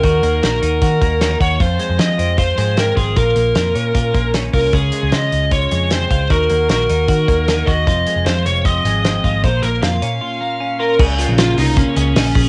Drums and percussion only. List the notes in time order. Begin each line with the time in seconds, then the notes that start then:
0.03 kick, closed hi-hat
0.23 closed hi-hat
0.43 snare, closed hi-hat
0.63 closed hi-hat
0.82 kick, closed hi-hat
1.01 kick, closed hi-hat
1.21 snare, closed hi-hat
1.41 kick, closed hi-hat
1.60 kick, closed hi-hat
1.79 closed hi-hat
1.99 snare, closed hi-hat
2.19 closed hi-hat
2.38 kick, closed hi-hat
2.58 closed hi-hat
2.77 snare, closed hi-hat
2.97 kick, closed hi-hat
3.16 kick, closed hi-hat
3.36 closed hi-hat
3.55 snare, closed hi-hat
3.75 closed hi-hat
3.95 kick, closed hi-hat
4.14 kick, closed hi-hat
4.34 snare, closed hi-hat
4.54 kick, open hi-hat
4.73 kick, closed hi-hat
4.92 closed hi-hat
5.12 snare, closed hi-hat
5.33 closed hi-hat
5.51 kick, closed hi-hat
5.71 closed hi-hat
5.91 snare, closed hi-hat
6.11 kick, closed hi-hat
6.30 kick, closed hi-hat
6.50 closed hi-hat
6.69 snare, closed hi-hat
6.90 closed hi-hat
7.08 kick, closed hi-hat
7.28 kick, closed hi-hat
7.48 snare, closed hi-hat
7.67 kick, closed hi-hat
7.87 kick, closed hi-hat
8.07 closed hi-hat
8.26 snare, closed hi-hat
8.46 closed hi-hat
8.65 kick, closed hi-hat
8.85 closed hi-hat
9.05 snare, closed hi-hat
9.24 kick, closed hi-hat
9.44 kick, closed hi-hat
9.63 closed hi-hat
9.82 snare, closed hi-hat
10.02 closed hi-hat
10.99 kick, crash
11.18 hi-hat pedal, open hi-hat
11.38 snare, hi-hat pedal, open hi-hat
11.58 hi-hat pedal, open hi-hat
11.77 kick, hi-hat pedal, open hi-hat
11.97 hi-hat pedal, open hi-hat
12.16 snare, hi-hat pedal, open hi-hat
12.35 kick, hi-hat pedal, open hi-hat